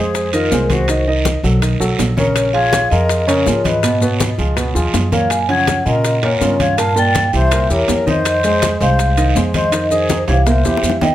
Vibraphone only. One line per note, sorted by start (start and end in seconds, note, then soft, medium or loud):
0.00 0.34 C5 medium
0.34 0.72 A#4 medium
0.71 1.05 C5 medium
2.17 2.52 C#5 medium
2.53 2.92 F5 loud
2.90 3.29 D#5 medium
3.27 3.66 C#5 medium
3.65 3.99 D#5 medium
5.13 5.32 F5 medium
5.30 5.39 G#5 medium
5.49 5.87 F#5 medium
5.86 6.20 D#5 medium
6.24 6.61 C#5 medium
6.60 6.77 F5 medium
6.79 6.98 A5 loud
6.98 7.35 G5 loud
7.35 7.72 E5 medium
7.72 8.09 C#5 medium
8.09 8.84 D#5 medium
8.82 9.33 F5 medium
9.55 9.93 D#5 medium
9.93 10.30 C5 medium
10.29 10.47 F5 medium
10.46 10.98 E5 medium
11.02 11.10 G5 medium